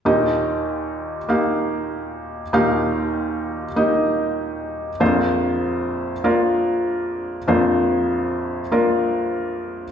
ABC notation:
X:1
M:4/4
L:1/8
Q:"Swing 16ths" 1/4=97
K:Eb
V:1 name="Felt piano"
[B,EGe]4 [B,EGf]4 | [B,EGf]4 [B,EGe]4 | [B,DFc]4 [B,DFB]4 | [B,DFc]4 [B,DFB]4 |]
V:2 name="Felt piano" clef=bass
[E,,B,,]8 | [E,,B,,]8 | [B,,,F,,]8 | [B,,,F,,]8 |]